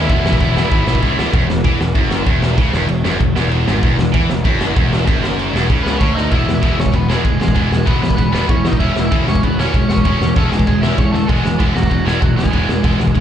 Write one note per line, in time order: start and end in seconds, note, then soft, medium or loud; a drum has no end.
0.00 0.11 D#2 medium
0.00 0.99 E4 medium
0.00 1.00 E5 medium
0.08 0.20 E1 medium
0.08 0.38 E2 medium
0.08 0.39 B2 medium
0.08 0.38 E3 medium
0.08 0.39 E3 medium
0.08 0.38 G#3 loud
0.08 0.39 B3 loud
0.08 0.39 E4 loud
0.08 kick loud
0.08 crash medium
0.25 0.36 E1 medium
0.25 snare loud
0.33 kick medium
0.39 0.63 E1 loud
0.39 0.57 E2 medium
0.39 0.56 B2 medium
0.39 0.55 E3 medium
0.39 0.55 E3 loud
0.39 0.54 G#3 medium
0.39 0.54 B3 medium
0.39 0.53 E4 loud
0.39 kick loud
0.39 crash medium
0.55 0.70 E2 medium
0.55 0.70 B2 medium
0.55 0.69 E3 medium
0.55 0.71 E3 loud
0.55 0.69 G#3 medium
0.55 0.69 B3 medium
0.55 0.69 E4 loud
0.55 snare loud
0.70 0.83 G#1 loud
0.70 1.01 E2 loud
0.70 1.02 B2 loud
0.70 1.01 E3 loud
0.70 1.02 E3 loud
0.70 1.01 G#3 medium
0.70 1.01 B3 medium
0.70 1.01 E4 loud
0.70 kick loud
0.70 crash medium
0.87 0.98 B1 medium
0.87 snare loud
0.95 kick medium
1.02 1.25 C#2 medium
1.02 1.17 E2 medium
1.02 1.16 B2 loud
1.02 1.18 E3 medium
1.02 1.16 E3 loud
1.02 1.17 G#3 medium
1.02 1.17 B3 medium
1.02 1.16 E4 loud
1.02 kick medium
1.02 crash medium
1.18 1.32 E2 medium
1.18 1.33 B2 medium
1.18 1.32 E3 loud
1.18 1.33 E3 medium
1.18 1.33 G#3 medium
1.18 1.33 B3 loud
1.18 1.33 E4 loud
1.18 snare loud
1.33 1.48 E1 medium
1.33 1.47 E2 medium
1.33 1.49 E2 loud
1.33 kick loud
1.33 crash medium
1.48 1.64 E1 medium
1.48 1.61 E2 medium
1.48 1.62 E2 medium
1.48 snare loud
1.64 1.79 E2 loud
1.64 1.80 E3 medium
1.64 1.80 E3 loud
1.64 kick loud
1.64 crash medium
1.80 1.95 E1 medium
1.80 1.92 E2 medium
1.80 1.93 E2 medium
1.80 snare loud
1.95 2.25 F#1 loud
1.95 2.26 F#2 loud
1.95 kick loud
1.95 crash medium
2.11 snare loud
2.26 2.56 E1 medium
2.26 2.57 E2 loud
2.26 kick loud
2.26 crash medium
2.43 snare loud
2.58 2.72 C#2 loud
2.58 2.73 C#3 loud
2.58 kick loud
2.58 crash medium
2.72 2.88 E1 medium
2.72 2.87 E2 loud
2.72 2.88 E2 medium
2.72 snare loud
2.88 3.03 E1 medium
2.88 3.01 E2 medium
2.88 3.02 E2 medium
2.88 crash medium
3.04 3.19 F#1 loud
3.04 3.19 F#2 medium
3.04 3.20 F#2 loud
3.04 snare loud
3.19 3.35 E1 medium
3.19 3.32 E2 medium
3.19 3.33 E2 medium
3.19 kick medium
3.19 crash medium
3.35 3.65 E1 medium
3.35 3.67 E2 loud
3.35 snare loud
3.51 crash medium
3.67 3.82 G#1 medium
3.67 3.82 G#2 loud
3.67 3.83 G#2 loud
3.67 snare loud
3.83 3.97 E1 loud
3.83 3.97 E2 loud
3.83 3.98 E2 medium
3.83 kick loud
3.83 crash medium
3.98 4.13 E1 medium
3.98 4.11 E2 medium
3.98 snare loud
4.12 4.29 E2 loud
4.12 4.28 E3 loud
4.12 4.29 E3 loud
4.12 kick loud
4.12 crash medium
4.29 4.44 E1 medium
4.29 4.42 E2 medium
4.29 4.45 E2 medium
4.29 snare loud
4.44 4.74 F#1 loud
4.44 4.75 F#2 loud
4.44 4.76 F#2 loud
4.44 kick loud
4.44 crash medium
4.61 snare loud
4.75 5.05 E1 medium
4.75 5.06 E2 loud
4.75 kick loud
4.75 crash medium
4.93 snare loud
5.06 5.51 F#1 loud
5.06 5.53 F#2 loud
5.06 5.52 F#2 loud
5.06 kick loud
5.06 crash medium
5.24 snare loud
5.39 crash medium
5.53 5.68 E1 loud
5.53 5.68 E2 loud
5.53 5.69 E2 medium
5.53 snare loud
5.69 5.99 C#2 loud
5.69 6.00 C#3 loud
5.69 5.99 C#3 loud
5.69 kick medium
5.69 crash medium
5.83 5.99 B3 medium
5.83 5.99 B4 medium
5.83 snare loud
5.99 6.30 D2 loud
5.99 6.31 D3 loud
5.99 6.15 C#4 medium
5.99 6.15 C#5 medium
5.99 kick loud
5.99 crash medium
6.15 6.30 D#4 medium
6.15 6.31 D#5 loud
6.15 snare medium
6.31 6.43 E1 medium
6.31 6.46 E2 medium
6.31 6.46 B2 medium
6.31 6.45 E3 medium
6.31 6.46 E3 medium
6.31 6.46 G#3 medium
6.31 6.47 B3 medium
6.31 6.54 E4 medium
6.31 6.53 E5 loud
6.31 kick loud
6.31 crash medium
6.46 6.58 E1 medium
6.46 6.61 E2 medium
6.46 6.61 B2 medium
6.46 6.60 E3 medium
6.46 6.61 G#3 medium
6.46 snare loud
6.55 6.77 E4 medium
6.55 6.76 E5 loud
6.62 6.74 E1 loud
6.62 6.75 E2 loud
6.62 6.76 B2 medium
6.62 6.76 E3 medium
6.62 6.78 E3 medium
6.62 6.76 G#3 medium
6.62 6.77 B3 medium
6.62 kick loud
6.62 crash medium
6.76 6.88 E1 medium
6.76 6.91 E2 medium
6.76 6.92 B2 medium
6.76 6.92 E3 medium
6.76 6.92 G#3 medium
6.76 snare loud
6.80 6.94 C#4 medium
6.80 6.95 C#5 loud
6.86 kick medium
6.92 7.15 E1 loud
6.92 7.07 E2 medium
6.92 7.07 B2 medium
6.92 7.08 E3 medium
6.92 7.08 G#3 medium
6.92 7.09 B3 medium
6.92 7.09 B4 medium
6.92 kick medium
6.92 crash medium
7.08 7.23 E2 loud
7.08 7.22 B2 loud
7.08 7.24 E3 medium
7.08 7.24 E3 loud
7.08 7.24 G#3 medium
7.08 7.39 G#3 medium
7.08 7.24 B3 loud
7.08 7.41 G#4 medium
7.08 snare loud
7.24 7.36 E1 medium
7.24 7.38 E2 medium
7.24 7.38 B2 medium
7.24 7.39 E3 medium
7.24 7.39 G#3 medium
7.24 kick medium
7.24 crash medium
7.40 7.51 E1 medium
7.40 7.53 E2 medium
7.40 7.54 B2 medium
7.40 7.53 E3 medium
7.40 7.54 G#3 medium
7.40 7.85 G#3 medium
7.40 7.87 G#4 loud
7.40 snare loud
7.48 kick medium
7.55 7.67 E1 loud
7.55 7.69 E2 medium
7.55 7.69 B2 medium
7.55 7.70 E3 medium
7.55 7.71 E3 medium
7.55 7.70 G#3 medium
7.55 7.70 B3 loud
7.55 kick medium
7.55 crash medium
7.70 7.82 E1 medium
7.70 7.84 E2 medium
7.70 7.85 B2 medium
7.70 7.85 E3 medium
7.70 7.85 G#3 medium
7.70 snare loud
7.85 7.98 E1 loud
7.85 8.00 E2 medium
7.85 8.00 B2 medium
7.85 8.01 E3 medium
7.85 8.01 G#3 loud
7.85 8.02 B3 loud
7.85 8.01 B3 medium
7.85 8.01 B4 loud
7.85 kick loud
7.85 crash medium
8.01 8.13 E1 medium
8.01 8.16 E2 medium
8.01 8.16 B2 medium
8.01 8.16 E3 medium
8.01 8.16 G#3 medium
8.01 8.16 B3 medium
8.01 8.15 B4 medium
8.01 snare loud
8.11 kick medium
8.16 8.40 E1 medium
8.16 8.31 E2 medium
8.16 8.31 B2 medium
8.16 8.31 E3 medium
8.16 8.31 G#3 medium
8.16 8.32 B3 medium
8.16 8.33 B4 medium
8.16 kick medium
8.16 crash medium
8.32 8.47 E2 loud
8.32 8.48 B2 medium
8.32 8.48 E3 medium
8.32 8.48 G#3 medium
8.32 8.48 B3 loud
8.32 8.49 B3 medium
8.32 8.49 B4 medium
8.32 snare loud
8.48 8.63 E2 medium
8.48 8.71 E2 medium
8.48 8.63 B2 loud
8.48 8.63 E3 medium
8.48 8.63 G#3 medium
8.48 8.63 C#4 medium
8.48 8.67 C#5 medium
8.48 kick loud
8.48 crash soft
8.64 8.79 E2 medium
8.64 8.79 B2 medium
8.64 8.79 E3 medium
8.64 8.79 G#3 medium
8.64 8.80 D#4 medium
8.64 8.79 D#5 loud
8.64 snare loud
8.73 kick medium
8.80 8.91 E1 medium
8.80 8.95 C#3 medium
8.80 8.94 E3 medium
8.80 8.95 G#3 loud
8.80 8.95 G#3 medium
8.80 8.95 C#4 loud
8.80 8.96 C#4 medium
8.80 9.02 E4 medium
8.80 9.04 E5 loud
8.80 kick medium
8.80 crash medium
8.95 9.08 E1 medium
8.95 9.10 C#3 medium
8.95 9.10 E3 medium
8.95 9.10 G#3 medium
8.95 snare loud
9.06 9.27 E4 medium
9.06 9.26 E5 loud
9.11 9.23 E1 loud
9.11 9.26 C#3 medium
9.11 9.26 E3 loud
9.11 9.26 G#3 loud
9.11 9.27 G#3 medium
9.11 9.26 C#4 medium
9.11 9.27 C#4 loud
9.11 kick loud
9.11 crash medium
9.28 9.38 E1 medium
9.28 9.41 C#3 medium
9.28 9.41 E3 medium
9.28 9.41 G#3 medium
9.28 9.42 G#3 medium
9.28 9.42 C#4 medium
9.28 9.44 C#5 medium
9.28 snare loud
9.35 kick medium
9.43 9.65 E1 medium
9.43 9.57 C#3 medium
9.43 9.57 E3 medium
9.43 9.57 G#3 medium
9.43 9.57 B3 medium
9.43 9.59 B4 medium
9.43 kick medium
9.43 crash medium
9.59 9.73 C#3 loud
9.59 9.73 E3 medium
9.59 9.73 G#3 loud
9.59 9.74 G#3 loud
9.59 9.73 C#4 medium
9.59 9.88 C#4 medium
9.59 9.74 C#4 loud
9.59 9.88 C#5 medium
9.59 snare loud
9.74 9.85 E1 loud
9.74 9.88 C#3 medium
9.74 9.88 E3 medium
9.74 9.88 G#3 medium
9.74 kick medium
9.74 crash medium
9.89 10.00 E1 medium
9.89 10.04 C#3 medium
9.89 10.04 E3 medium
9.89 10.04 G#3 medium
9.89 10.33 C#4 medium
9.89 10.37 C#5 medium
9.89 snare loud
9.98 kick medium
10.05 10.16 E1 medium
10.05 10.19 C#3 medium
10.05 10.20 E3 medium
10.05 10.20 G#3 medium
10.05 10.19 G#3 medium
10.05 10.20 C#4 medium
10.05 10.20 C#4 loud
10.05 kick medium
10.05 crash medium
10.21 10.31 E1 medium
10.21 10.35 C#3 medium
10.21 10.35 E3 medium
10.21 10.34 G#3 loud
10.21 10.35 G#3 medium
10.21 snare loud
10.36 10.47 E1 loud
10.36 10.51 C#3 medium
10.36 10.50 E3 medium
10.36 10.51 G#3 medium
10.36 10.51 A3 medium
10.36 10.51 C#4 medium
10.36 10.50 A4 loud
10.36 kick loud
10.36 crash medium
10.50 10.63 E1 medium
10.50 10.66 C#3 medium
10.50 10.65 E3 medium
10.50 10.66 G#3 medium
10.50 10.67 G#3 medium
10.50 10.66 G#4 medium
10.50 snare loud
10.59 kick medium
10.67 10.89 E1 medium
10.67 10.82 C#3 medium
10.67 10.81 E3 medium
10.67 10.81 G#3 medium
10.67 10.82 G#3 medium
10.67 10.82 G#3 loud
10.67 10.82 G#4 medium
10.67 kick medium
10.67 crash medium
10.81 10.97 C#3 loud
10.81 10.97 E3 medium
10.81 10.97 G#3 loud
10.81 10.98 G#3 medium
10.81 10.97 C#4 loud
10.81 10.98 C#4 loud
10.81 10.97 E4 medium
10.81 10.97 E5 loud
10.81 snare loud
10.97 11.20 E2 loud
10.97 11.13 C#3 medium
10.97 11.12 E3 medium
10.97 11.12 G#3 medium
10.97 11.13 G#3 medium
10.97 11.13 C#4 medium
10.97 11.14 C#5 medium
10.97 kick loud
10.97 crash medium
11.12 11.28 C#3 medium
11.12 11.27 E3 medium
11.12 11.27 G#3 medium
11.12 11.28 G#3 medium
11.12 11.28 A3 medium
11.12 11.28 A4 medium
11.12 snare medium
11.28 11.40 E1 medium
11.28 11.44 E2 medium
11.28 11.44 B2 medium
11.28 11.42 E3 medium
11.28 11.45 E3 medium
11.28 11.72 G#3 medium
11.28 11.42 G#3 medium
11.28 11.44 B3 loud
11.28 11.75 G#4 medium
11.28 kick loud
11.28 crash medium
11.43 11.56 E1 medium
11.43 11.58 E2 medium
11.43 11.58 B2 medium
11.43 11.57 E3 medium
11.43 11.58 G#3 medium
11.43 snare loud
11.58 11.71 E1 loud
11.58 11.74 E2 medium
11.58 11.75 B2 medium
11.58 11.73 E3 medium
11.58 11.75 E3 loud
11.58 11.74 G#3 medium
11.58 11.74 B3 medium
11.58 kick loud
11.58 crash medium
11.75 11.86 E1 loud
11.75 11.89 E2 medium
11.75 11.90 B2 medium
11.75 11.89 E3 medium
11.75 12.05 F#3 medium
11.75 11.89 G#3 medium
11.75 12.07 F#4 medium
11.75 snare loud
11.83 kick medium
11.90 12.13 E1 loud
11.90 12.04 E2 medium
11.90 12.05 B2 medium
11.90 12.04 E3 medium
11.90 12.04 G#3 medium
11.90 kick medium
11.90 crash medium
12.05 12.21 E2 loud
12.05 12.21 B2 loud
12.05 12.20 E3 medium
12.05 12.21 E3 loud
12.05 12.20 G#3 medium
12.05 12.22 G#3 medium
12.05 12.21 B3 loud
12.05 12.23 G#4 medium
12.05 snare loud
12.22 12.33 E1 medium
12.22 12.36 E2 medium
12.22 12.36 B2 medium
12.22 12.35 E3 medium
12.22 12.37 F#3 medium
12.22 12.35 G#3 medium
12.22 12.37 F#4 medium
12.22 kick loud
12.22 crash medium
12.36 12.48 E1 medium
12.36 12.52 E2 medium
12.36 12.52 B2 medium
12.36 12.49 E3 medium
12.36 12.50 G#3 medium
12.36 13.20 G#3 medium
12.36 13.20 G#4 medium
12.36 snare loud
12.45 kick medium
12.51 12.64 E1 loud
12.51 12.67 E2 medium
12.51 12.67 B2 medium
12.51 12.67 E3 medium
12.51 12.68 E3 medium
12.51 12.67 G#3 loud
12.51 12.67 B3 loud
12.51 kick medium
12.51 crash medium
12.68 12.80 E1 medium
12.68 12.82 E2 medium
12.68 12.83 B2 medium
12.68 12.82 E3 medium
12.68 12.83 G#3 medium
12.68 snare loud
12.83 12.95 E1 loud
12.83 12.99 E2 medium
12.83 12.98 B2 medium
12.83 12.98 E3 medium
12.83 12.99 E3 loud
12.83 12.98 G#3 loud
12.83 12.99 B3 loud
12.83 kick loud
12.83 crash medium
12.99 13.11 E1 medium
12.99 13.13 E2 medium
12.99 13.13 B2 medium
12.99 13.14 E3 medium
12.99 13.14 G#3 medium
12.99 snare loud
13.07 kick medium
13.14 13.20 E1 medium
13.14 13.20 E2 medium
13.14 13.20 B2 medium
13.14 13.20 E3 medium
13.14 13.20 G#3 medium
13.14 kick medium
13.14 crash medium